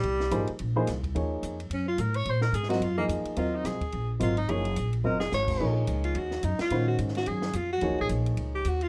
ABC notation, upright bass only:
X:1
M:4/4
L:1/8
Q:"Swing" 1/4=216
K:Fm
V:1 name="Upright bass" clef=bass
C,,2 A,,, z B,,,2 C,,2 | [K:Ebdor] E,,2 F,,2 G,,2 =A,,2 | B,,2 A,,2 G,,2 F,, z | E,,2 C,, z B,,,2 A,,,2 |
G,,,2 B,,,2 F,,,2 A,,,2 | B,,,2 D,,2 E,,2 G,, z | B,,2 A,,2 G,,2 F,,2 | (3E,, D,, B,,, B,,,2 D,,2 E,,2 |]